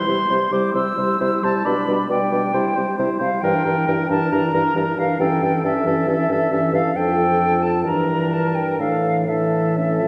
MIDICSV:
0, 0, Header, 1, 6, 480
1, 0, Start_track
1, 0, Tempo, 447094
1, 1778, Time_signature, 4, 2, 24, 8
1, 4164, Tempo, 439883
1, 8004, Tempo, 457666
1, 8964, Tempo, 480769
1, 10727, End_track
2, 0, Start_track
2, 0, Title_t, "Flute"
2, 0, Program_c, 0, 73
2, 0, Note_on_c, 0, 84, 70
2, 560, Note_on_c, 0, 86, 72
2, 576, Note_off_c, 0, 84, 0
2, 793, Note_off_c, 0, 86, 0
2, 799, Note_on_c, 0, 88, 72
2, 1542, Note_on_c, 0, 81, 75
2, 1559, Note_off_c, 0, 88, 0
2, 1780, Note_on_c, 0, 83, 71
2, 1796, Note_off_c, 0, 81, 0
2, 2249, Note_off_c, 0, 83, 0
2, 2256, Note_on_c, 0, 79, 73
2, 3127, Note_off_c, 0, 79, 0
2, 3444, Note_on_c, 0, 77, 74
2, 3666, Note_on_c, 0, 79, 76
2, 3682, Note_off_c, 0, 77, 0
2, 4393, Note_off_c, 0, 79, 0
2, 4407, Note_on_c, 0, 81, 77
2, 4655, Note_on_c, 0, 82, 75
2, 4672, Note_off_c, 0, 81, 0
2, 5373, Note_on_c, 0, 77, 69
2, 5389, Note_off_c, 0, 82, 0
2, 5609, Note_on_c, 0, 79, 71
2, 5625, Note_off_c, 0, 77, 0
2, 6081, Note_off_c, 0, 79, 0
2, 6098, Note_on_c, 0, 76, 65
2, 7299, Note_on_c, 0, 77, 71
2, 7315, Note_off_c, 0, 76, 0
2, 7529, Note_on_c, 0, 79, 69
2, 7546, Note_off_c, 0, 77, 0
2, 8242, Note_on_c, 0, 81, 72
2, 8257, Note_off_c, 0, 79, 0
2, 8479, Note_off_c, 0, 81, 0
2, 8490, Note_on_c, 0, 82, 58
2, 8980, Note_on_c, 0, 81, 62
2, 8995, Note_off_c, 0, 82, 0
2, 9200, Note_on_c, 0, 79, 59
2, 9215, Note_off_c, 0, 81, 0
2, 9435, Note_off_c, 0, 79, 0
2, 9441, Note_on_c, 0, 77, 70
2, 9933, Note_on_c, 0, 76, 51
2, 9948, Note_off_c, 0, 77, 0
2, 10727, Note_off_c, 0, 76, 0
2, 10727, End_track
3, 0, Start_track
3, 0, Title_t, "Oboe"
3, 0, Program_c, 1, 68
3, 96, Note_on_c, 1, 72, 38
3, 324, Note_off_c, 1, 72, 0
3, 336, Note_on_c, 1, 72, 39
3, 565, Note_off_c, 1, 72, 0
3, 570, Note_on_c, 1, 72, 44
3, 796, Note_off_c, 1, 72, 0
3, 802, Note_on_c, 1, 72, 47
3, 1043, Note_off_c, 1, 72, 0
3, 1052, Note_on_c, 1, 72, 43
3, 1290, Note_off_c, 1, 72, 0
3, 1302, Note_on_c, 1, 72, 48
3, 1531, Note_off_c, 1, 72, 0
3, 1537, Note_on_c, 1, 72, 45
3, 1761, Note_off_c, 1, 72, 0
3, 1767, Note_on_c, 1, 74, 46
3, 1996, Note_off_c, 1, 74, 0
3, 2003, Note_on_c, 1, 74, 41
3, 2243, Note_off_c, 1, 74, 0
3, 2249, Note_on_c, 1, 74, 47
3, 2484, Note_off_c, 1, 74, 0
3, 2490, Note_on_c, 1, 74, 48
3, 2722, Note_off_c, 1, 74, 0
3, 2729, Note_on_c, 1, 72, 41
3, 2951, Note_off_c, 1, 72, 0
3, 2957, Note_on_c, 1, 72, 48
3, 3191, Note_off_c, 1, 72, 0
3, 3197, Note_on_c, 1, 72, 51
3, 3422, Note_off_c, 1, 72, 0
3, 3428, Note_on_c, 1, 72, 52
3, 3671, Note_off_c, 1, 72, 0
3, 3692, Note_on_c, 1, 70, 54
3, 3913, Note_off_c, 1, 70, 0
3, 3919, Note_on_c, 1, 70, 48
3, 4146, Note_off_c, 1, 70, 0
3, 4153, Note_on_c, 1, 70, 47
3, 4392, Note_off_c, 1, 70, 0
3, 4399, Note_on_c, 1, 70, 49
3, 4633, Note_off_c, 1, 70, 0
3, 4651, Note_on_c, 1, 70, 46
3, 4879, Note_off_c, 1, 70, 0
3, 4890, Note_on_c, 1, 70, 54
3, 5118, Note_off_c, 1, 70, 0
3, 5134, Note_on_c, 1, 70, 46
3, 5360, Note_off_c, 1, 70, 0
3, 5380, Note_on_c, 1, 70, 48
3, 5605, Note_off_c, 1, 70, 0
3, 5611, Note_on_c, 1, 69, 46
3, 5839, Note_off_c, 1, 69, 0
3, 5870, Note_on_c, 1, 69, 45
3, 6087, Note_off_c, 1, 69, 0
3, 6099, Note_on_c, 1, 69, 47
3, 6322, Note_off_c, 1, 69, 0
3, 6334, Note_on_c, 1, 69, 51
3, 6559, Note_off_c, 1, 69, 0
3, 6578, Note_on_c, 1, 69, 49
3, 6802, Note_off_c, 1, 69, 0
3, 6824, Note_on_c, 1, 69, 48
3, 7046, Note_off_c, 1, 69, 0
3, 7053, Note_on_c, 1, 69, 51
3, 7281, Note_off_c, 1, 69, 0
3, 7292, Note_on_c, 1, 69, 42
3, 7497, Note_off_c, 1, 69, 0
3, 7504, Note_on_c, 1, 69, 51
3, 8429, Note_off_c, 1, 69, 0
3, 8485, Note_on_c, 1, 70, 42
3, 9455, Note_on_c, 1, 69, 39
3, 9470, Note_off_c, 1, 70, 0
3, 9797, Note_off_c, 1, 69, 0
3, 9941, Note_on_c, 1, 69, 41
3, 10403, Note_off_c, 1, 69, 0
3, 10422, Note_on_c, 1, 69, 37
3, 10727, Note_off_c, 1, 69, 0
3, 10727, End_track
4, 0, Start_track
4, 0, Title_t, "Clarinet"
4, 0, Program_c, 2, 71
4, 70, Note_on_c, 2, 64, 41
4, 311, Note_off_c, 2, 64, 0
4, 318, Note_on_c, 2, 64, 43
4, 556, Note_off_c, 2, 64, 0
4, 561, Note_on_c, 2, 64, 45
4, 796, Note_off_c, 2, 64, 0
4, 803, Note_on_c, 2, 64, 46
4, 1043, Note_off_c, 2, 64, 0
4, 1053, Note_on_c, 2, 64, 40
4, 1278, Note_off_c, 2, 64, 0
4, 1285, Note_on_c, 2, 64, 48
4, 1528, Note_off_c, 2, 64, 0
4, 1533, Note_on_c, 2, 64, 44
4, 1767, Note_off_c, 2, 64, 0
4, 1773, Note_on_c, 2, 62, 55
4, 2010, Note_off_c, 2, 62, 0
4, 2020, Note_on_c, 2, 62, 42
4, 2248, Note_off_c, 2, 62, 0
4, 2254, Note_on_c, 2, 62, 44
4, 2486, Note_off_c, 2, 62, 0
4, 2492, Note_on_c, 2, 62, 46
4, 2727, Note_off_c, 2, 62, 0
4, 2735, Note_on_c, 2, 64, 56
4, 2963, Note_off_c, 2, 64, 0
4, 2970, Note_on_c, 2, 64, 42
4, 3203, Note_off_c, 2, 64, 0
4, 3208, Note_on_c, 2, 64, 51
4, 3439, Note_off_c, 2, 64, 0
4, 3446, Note_on_c, 2, 64, 44
4, 3679, Note_off_c, 2, 64, 0
4, 3687, Note_on_c, 2, 62, 54
4, 3920, Note_off_c, 2, 62, 0
4, 3932, Note_on_c, 2, 62, 47
4, 4161, Note_off_c, 2, 62, 0
4, 4172, Note_on_c, 2, 62, 49
4, 4402, Note_off_c, 2, 62, 0
4, 4412, Note_on_c, 2, 62, 54
4, 4635, Note_off_c, 2, 62, 0
4, 4641, Note_on_c, 2, 62, 59
4, 4874, Note_off_c, 2, 62, 0
4, 4890, Note_on_c, 2, 62, 46
4, 5118, Note_off_c, 2, 62, 0
4, 5123, Note_on_c, 2, 62, 46
4, 5352, Note_off_c, 2, 62, 0
4, 5359, Note_on_c, 2, 62, 46
4, 5594, Note_off_c, 2, 62, 0
4, 5610, Note_on_c, 2, 61, 52
4, 5839, Note_off_c, 2, 61, 0
4, 5857, Note_on_c, 2, 61, 48
4, 6074, Note_off_c, 2, 61, 0
4, 6081, Note_on_c, 2, 61, 51
4, 6304, Note_off_c, 2, 61, 0
4, 6311, Note_on_c, 2, 61, 54
4, 6548, Note_off_c, 2, 61, 0
4, 6557, Note_on_c, 2, 61, 52
4, 6787, Note_off_c, 2, 61, 0
4, 6794, Note_on_c, 2, 61, 43
4, 7025, Note_off_c, 2, 61, 0
4, 7032, Note_on_c, 2, 61, 48
4, 7270, Note_off_c, 2, 61, 0
4, 7276, Note_on_c, 2, 61, 44
4, 7512, Note_off_c, 2, 61, 0
4, 7527, Note_on_c, 2, 62, 48
4, 8302, Note_off_c, 2, 62, 0
4, 8480, Note_on_c, 2, 62, 47
4, 9421, Note_off_c, 2, 62, 0
4, 9449, Note_on_c, 2, 62, 41
4, 9921, Note_off_c, 2, 62, 0
4, 9941, Note_on_c, 2, 62, 41
4, 10418, Note_on_c, 2, 61, 42
4, 10433, Note_off_c, 2, 62, 0
4, 10727, Note_off_c, 2, 61, 0
4, 10727, End_track
5, 0, Start_track
5, 0, Title_t, "French horn"
5, 0, Program_c, 3, 60
5, 83, Note_on_c, 3, 55, 46
5, 313, Note_off_c, 3, 55, 0
5, 319, Note_on_c, 3, 55, 43
5, 548, Note_off_c, 3, 55, 0
5, 555, Note_on_c, 3, 55, 51
5, 787, Note_off_c, 3, 55, 0
5, 794, Note_on_c, 3, 55, 51
5, 1031, Note_off_c, 3, 55, 0
5, 1037, Note_on_c, 3, 55, 45
5, 1270, Note_off_c, 3, 55, 0
5, 1276, Note_on_c, 3, 55, 42
5, 1523, Note_off_c, 3, 55, 0
5, 1529, Note_on_c, 3, 55, 46
5, 1769, Note_off_c, 3, 55, 0
5, 1778, Note_on_c, 3, 55, 53
5, 2008, Note_off_c, 3, 55, 0
5, 2014, Note_on_c, 3, 55, 47
5, 2241, Note_off_c, 3, 55, 0
5, 2247, Note_on_c, 3, 55, 47
5, 2485, Note_off_c, 3, 55, 0
5, 2492, Note_on_c, 3, 55, 51
5, 2722, Note_off_c, 3, 55, 0
5, 2729, Note_on_c, 3, 55, 50
5, 2957, Note_off_c, 3, 55, 0
5, 2963, Note_on_c, 3, 55, 51
5, 3200, Note_off_c, 3, 55, 0
5, 3211, Note_on_c, 3, 55, 47
5, 3436, Note_off_c, 3, 55, 0
5, 3443, Note_on_c, 3, 55, 52
5, 3675, Note_off_c, 3, 55, 0
5, 3681, Note_on_c, 3, 52, 54
5, 3917, Note_off_c, 3, 52, 0
5, 3923, Note_on_c, 3, 52, 45
5, 4157, Note_off_c, 3, 52, 0
5, 4170, Note_on_c, 3, 52, 52
5, 4395, Note_off_c, 3, 52, 0
5, 4401, Note_on_c, 3, 52, 52
5, 4635, Note_off_c, 3, 52, 0
5, 4646, Note_on_c, 3, 52, 57
5, 4865, Note_off_c, 3, 52, 0
5, 4872, Note_on_c, 3, 52, 48
5, 5107, Note_off_c, 3, 52, 0
5, 5113, Note_on_c, 3, 52, 50
5, 5350, Note_off_c, 3, 52, 0
5, 5357, Note_on_c, 3, 52, 48
5, 5589, Note_off_c, 3, 52, 0
5, 5596, Note_on_c, 3, 52, 61
5, 5832, Note_off_c, 3, 52, 0
5, 5845, Note_on_c, 3, 52, 50
5, 6074, Note_off_c, 3, 52, 0
5, 6085, Note_on_c, 3, 52, 46
5, 6308, Note_off_c, 3, 52, 0
5, 6314, Note_on_c, 3, 52, 50
5, 6539, Note_off_c, 3, 52, 0
5, 6546, Note_on_c, 3, 52, 54
5, 6786, Note_off_c, 3, 52, 0
5, 6793, Note_on_c, 3, 52, 46
5, 7024, Note_off_c, 3, 52, 0
5, 7031, Note_on_c, 3, 52, 46
5, 7270, Note_off_c, 3, 52, 0
5, 7287, Note_on_c, 3, 52, 44
5, 7510, Note_off_c, 3, 52, 0
5, 7516, Note_on_c, 3, 53, 55
5, 8466, Note_on_c, 3, 52, 52
5, 8482, Note_off_c, 3, 53, 0
5, 9263, Note_off_c, 3, 52, 0
5, 9433, Note_on_c, 3, 52, 46
5, 9913, Note_off_c, 3, 52, 0
5, 9933, Note_on_c, 3, 52, 54
5, 10646, Note_on_c, 3, 53, 45
5, 10661, Note_off_c, 3, 52, 0
5, 10727, Note_off_c, 3, 53, 0
5, 10727, End_track
6, 0, Start_track
6, 0, Title_t, "Bassoon"
6, 0, Program_c, 4, 70
6, 85, Note_on_c, 4, 48, 45
6, 192, Note_off_c, 4, 48, 0
6, 325, Note_on_c, 4, 48, 50
6, 433, Note_off_c, 4, 48, 0
6, 563, Note_on_c, 4, 48, 52
6, 672, Note_off_c, 4, 48, 0
6, 804, Note_on_c, 4, 48, 56
6, 914, Note_off_c, 4, 48, 0
6, 1053, Note_on_c, 4, 48, 50
6, 1162, Note_off_c, 4, 48, 0
6, 1297, Note_on_c, 4, 48, 58
6, 1406, Note_off_c, 4, 48, 0
6, 1543, Note_on_c, 4, 48, 55
6, 1650, Note_off_c, 4, 48, 0
6, 1786, Note_on_c, 4, 47, 60
6, 1892, Note_off_c, 4, 47, 0
6, 2018, Note_on_c, 4, 47, 52
6, 2125, Note_off_c, 4, 47, 0
6, 2252, Note_on_c, 4, 47, 57
6, 2360, Note_off_c, 4, 47, 0
6, 2495, Note_on_c, 4, 47, 61
6, 2602, Note_off_c, 4, 47, 0
6, 2731, Note_on_c, 4, 48, 57
6, 2838, Note_off_c, 4, 48, 0
6, 2973, Note_on_c, 4, 48, 48
6, 3079, Note_off_c, 4, 48, 0
6, 3212, Note_on_c, 4, 48, 62
6, 3318, Note_off_c, 4, 48, 0
6, 3442, Note_on_c, 4, 48, 56
6, 3550, Note_off_c, 4, 48, 0
6, 3691, Note_on_c, 4, 43, 64
6, 3797, Note_off_c, 4, 43, 0
6, 3922, Note_on_c, 4, 43, 58
6, 4030, Note_off_c, 4, 43, 0
6, 4163, Note_on_c, 4, 43, 57
6, 4271, Note_off_c, 4, 43, 0
6, 4401, Note_on_c, 4, 43, 64
6, 4508, Note_off_c, 4, 43, 0
6, 4645, Note_on_c, 4, 43, 57
6, 4751, Note_off_c, 4, 43, 0
6, 4883, Note_on_c, 4, 43, 57
6, 4990, Note_off_c, 4, 43, 0
6, 5118, Note_on_c, 4, 43, 61
6, 5225, Note_off_c, 4, 43, 0
6, 5362, Note_on_c, 4, 43, 54
6, 5469, Note_off_c, 4, 43, 0
6, 5603, Note_on_c, 4, 43, 60
6, 5710, Note_off_c, 4, 43, 0
6, 5844, Note_on_c, 4, 43, 48
6, 5950, Note_off_c, 4, 43, 0
6, 6083, Note_on_c, 4, 43, 56
6, 6189, Note_off_c, 4, 43, 0
6, 6321, Note_on_c, 4, 43, 61
6, 6427, Note_off_c, 4, 43, 0
6, 6560, Note_on_c, 4, 43, 58
6, 6667, Note_off_c, 4, 43, 0
6, 6797, Note_on_c, 4, 43, 56
6, 6905, Note_off_c, 4, 43, 0
6, 7039, Note_on_c, 4, 43, 52
6, 7147, Note_off_c, 4, 43, 0
6, 7272, Note_on_c, 4, 43, 54
6, 7381, Note_off_c, 4, 43, 0
6, 7519, Note_on_c, 4, 41, 60
6, 8476, Note_on_c, 4, 43, 49
6, 8492, Note_off_c, 4, 41, 0
6, 9434, Note_off_c, 4, 43, 0
6, 9440, Note_on_c, 4, 45, 47
6, 10386, Note_off_c, 4, 45, 0
6, 10407, Note_on_c, 4, 45, 39
6, 10727, Note_off_c, 4, 45, 0
6, 10727, End_track
0, 0, End_of_file